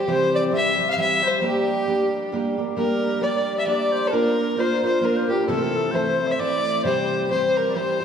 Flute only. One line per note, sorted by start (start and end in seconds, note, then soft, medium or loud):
0.08 0.32 C5 medium
0.33 0.55 D5 medium
0.53 0.90 E5 medium
0.88 0.97 F5 loud
0.98 1.24 E5 medium
1.23 1.43 C5 medium
1.43 2.29 G4 medium
2.76 3.23 A#4 medium
3.22 3.60 D5 medium
3.59 3.67 E5 loud
3.67 3.93 D5 medium
3.92 4.12 C5 medium
4.11 4.56 A#4 medium
4.57 4.81 C5 medium
4.82 5.01 C5 medium
5.02 5.18 A#4 medium
5.17 5.34 C5 medium
5.33 5.46 A#4 medium
5.46 5.64 A4 medium
5.62 5.77 A#4 medium
5.76 5.92 A4 medium
5.91 6.29 C5 medium
6.27 6.37 E5 medium
6.37 6.85 D5 medium
6.83 7.28 C5 medium
7.28 7.65 C5 medium
7.68 7.77 D5 medium
7.75 8.05 C5 medium